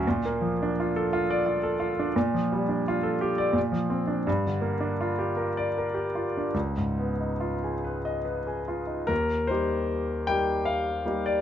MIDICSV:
0, 0, Header, 1, 2, 480
1, 0, Start_track
1, 0, Key_signature, -3, "major"
1, 0, Tempo, 702576
1, 35, Time_signature, 3, 2, 24, 8
1, 2915, Tempo, 732601
1, 3875, Tempo, 801068
1, 4355, Tempo, 855920
1, 5795, Tempo, 784314
1, 7210, End_track
2, 0, Start_track
2, 0, Title_t, "Grand piano"
2, 0, Program_c, 0, 0
2, 0, Control_c, 0, 64, 127
2, 47, Control_c, 0, 64, 0
2, 49, Note_on_c, 0, 46, 59
2, 139, Control_c, 0, 64, 127
2, 174, Note_on_c, 0, 58, 50
2, 282, Note_on_c, 0, 53, 43
2, 363, Note_off_c, 0, 58, 0
2, 427, Note_on_c, 0, 62, 49
2, 478, Note_off_c, 0, 53, 0
2, 546, Note_on_c, 0, 65, 51
2, 610, Note_off_c, 0, 62, 0
2, 658, Note_on_c, 0, 69, 58
2, 727, Note_off_c, 0, 65, 0
2, 772, Note_on_c, 0, 65, 61
2, 840, Note_off_c, 0, 69, 0
2, 891, Note_on_c, 0, 74, 60
2, 954, Note_off_c, 0, 65, 0
2, 999, Note_on_c, 0, 65, 52
2, 1071, Note_off_c, 0, 74, 0
2, 1115, Note_on_c, 0, 69, 56
2, 1184, Note_off_c, 0, 65, 0
2, 1228, Note_on_c, 0, 65, 56
2, 1304, Note_off_c, 0, 69, 0
2, 1363, Note_on_c, 0, 62, 50
2, 1423, Note_off_c, 0, 65, 0
2, 1453, Note_off_c, 0, 46, 0
2, 1476, Note_on_c, 0, 46, 61
2, 1479, Note_off_c, 0, 62, 0
2, 1485, Control_c, 0, 64, 0
2, 1599, Note_on_c, 0, 53, 44
2, 1603, Control_c, 0, 64, 127
2, 1724, Note_on_c, 0, 55, 46
2, 1793, Note_off_c, 0, 53, 0
2, 1836, Note_on_c, 0, 62, 42
2, 1914, Note_off_c, 0, 55, 0
2, 1968, Note_on_c, 0, 65, 57
2, 2027, Note_off_c, 0, 62, 0
2, 2071, Note_on_c, 0, 69, 51
2, 2152, Note_off_c, 0, 65, 0
2, 2194, Note_on_c, 0, 67, 53
2, 2262, Note_off_c, 0, 69, 0
2, 2310, Note_on_c, 0, 74, 55
2, 2384, Note_off_c, 0, 67, 0
2, 2402, Note_off_c, 0, 46, 0
2, 2412, Note_on_c, 0, 46, 51
2, 2431, Note_off_c, 0, 74, 0
2, 2442, Control_c, 0, 64, 0
2, 2540, Note_on_c, 0, 53, 43
2, 2542, Control_c, 0, 64, 127
2, 2664, Note_on_c, 0, 60, 43
2, 2740, Note_off_c, 0, 53, 0
2, 2784, Note_on_c, 0, 62, 45
2, 2862, Note_off_c, 0, 60, 0
2, 2891, Note_off_c, 0, 46, 0
2, 2910, Note_off_c, 0, 62, 0
2, 2916, Note_on_c, 0, 43, 60
2, 2927, Control_c, 0, 64, 0
2, 3035, Control_c, 0, 64, 127
2, 3046, Note_on_c, 0, 50, 43
2, 3143, Note_on_c, 0, 58, 46
2, 3228, Note_off_c, 0, 50, 0
2, 3268, Note_on_c, 0, 62, 42
2, 3337, Note_off_c, 0, 58, 0
2, 3400, Note_on_c, 0, 65, 49
2, 3461, Note_off_c, 0, 62, 0
2, 3518, Note_on_c, 0, 67, 46
2, 3588, Note_off_c, 0, 65, 0
2, 3635, Note_on_c, 0, 70, 49
2, 3708, Note_off_c, 0, 67, 0
2, 3771, Note_on_c, 0, 74, 52
2, 3829, Note_off_c, 0, 70, 0
2, 3903, Note_on_c, 0, 70, 42
2, 3952, Note_off_c, 0, 74, 0
2, 4003, Note_on_c, 0, 67, 40
2, 4074, Note_off_c, 0, 70, 0
2, 4127, Note_on_c, 0, 65, 39
2, 4186, Note_off_c, 0, 67, 0
2, 4260, Note_on_c, 0, 62, 35
2, 4315, Note_off_c, 0, 65, 0
2, 4333, Note_off_c, 0, 43, 0
2, 4359, Note_on_c, 0, 37, 47
2, 4368, Control_c, 0, 64, 0
2, 4371, Note_off_c, 0, 62, 0
2, 4470, Control_c, 0, 64, 127
2, 4490, Note_on_c, 0, 44, 36
2, 4610, Note_on_c, 0, 59, 34
2, 4681, Note_off_c, 0, 44, 0
2, 4732, Note_on_c, 0, 63, 33
2, 4800, Note_off_c, 0, 59, 0
2, 4843, Note_on_c, 0, 65, 40
2, 4920, Note_off_c, 0, 63, 0
2, 4974, Note_on_c, 0, 68, 38
2, 5034, Note_off_c, 0, 65, 0
2, 5090, Note_on_c, 0, 71, 40
2, 5159, Note_off_c, 0, 68, 0
2, 5206, Note_on_c, 0, 75, 45
2, 5276, Note_off_c, 0, 71, 0
2, 5318, Note_on_c, 0, 71, 38
2, 5393, Note_off_c, 0, 75, 0
2, 5442, Note_on_c, 0, 68, 37
2, 5510, Note_off_c, 0, 71, 0
2, 5559, Note_on_c, 0, 65, 38
2, 5633, Note_off_c, 0, 68, 0
2, 5665, Note_on_c, 0, 63, 32
2, 5749, Note_off_c, 0, 65, 0
2, 5774, Note_off_c, 0, 37, 0
2, 5777, Note_on_c, 0, 70, 74
2, 5785, Note_on_c, 0, 39, 43
2, 5788, Note_off_c, 0, 63, 0
2, 5807, Control_c, 0, 64, 0
2, 5899, Control_c, 0, 64, 127
2, 6023, Note_on_c, 0, 72, 57
2, 6028, Note_off_c, 0, 39, 0
2, 6031, Note_off_c, 0, 70, 0
2, 6040, Note_on_c, 0, 58, 29
2, 6041, Note_on_c, 0, 55, 28
2, 6042, Note_on_c, 0, 63, 28
2, 6047, Note_on_c, 0, 67, 35
2, 6495, Note_off_c, 0, 58, 0
2, 6496, Note_off_c, 0, 55, 0
2, 6496, Note_off_c, 0, 63, 0
2, 6498, Note_off_c, 0, 67, 0
2, 6511, Note_off_c, 0, 72, 0
2, 6511, Note_on_c, 0, 79, 69
2, 6521, Note_on_c, 0, 55, 34
2, 6522, Note_on_c, 0, 67, 37
2, 6524, Note_on_c, 0, 58, 34
2, 6524, Note_on_c, 0, 63, 33
2, 6745, Note_on_c, 0, 77, 60
2, 6755, Note_off_c, 0, 79, 0
2, 6974, Note_off_c, 0, 55, 0
2, 6975, Note_off_c, 0, 67, 0
2, 6976, Note_off_c, 0, 58, 0
2, 6976, Note_off_c, 0, 63, 0
2, 6989, Note_on_c, 0, 55, 31
2, 6995, Note_on_c, 0, 58, 30
2, 6998, Note_on_c, 0, 63, 31
2, 6999, Note_on_c, 0, 67, 33
2, 7110, Note_off_c, 0, 77, 0
2, 7116, Note_on_c, 0, 74, 57
2, 7208, Note_off_c, 0, 55, 0
2, 7210, Note_off_c, 0, 58, 0
2, 7210, Note_off_c, 0, 63, 0
2, 7210, Note_off_c, 0, 67, 0
2, 7210, Note_off_c, 0, 74, 0
2, 7210, End_track
0, 0, End_of_file